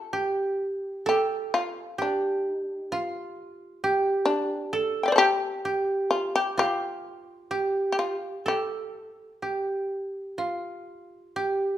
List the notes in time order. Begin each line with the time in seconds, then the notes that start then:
Already playing: F4 G4 A4
0.13 G4
1.06 G4 A4
1.54 F4
1.98 D4 G4
2.49 D#4
2.62 D4
2.76 D#4
2.89 D4 F4
3.84 G4
4.25 D4
4.73 A4
5.03 F5 G5
5.08 D5
5.12 A4 C5
5.18 G4
5.65 G4
6.11 F4
6.36 G4
6.57 F4 G4
7.51 G4
7.92 G4
7.99 F4
8.46 G4 A4
9.42 G4
10.38 F4
11.36 G4